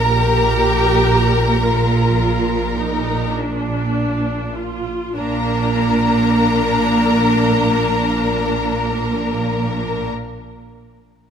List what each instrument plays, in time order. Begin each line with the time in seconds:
Already playing: double bass section A#1, cello section A#2, violin section A#4 A#5
0.06 viola section G4
1.67 viola section F4
2.77 viola section D#4
3.36 viola section D4
4.57 viola section F4
5.16 double bass section A#1, cello section A#2, viola section A#3 D4, violin section A#4 A#5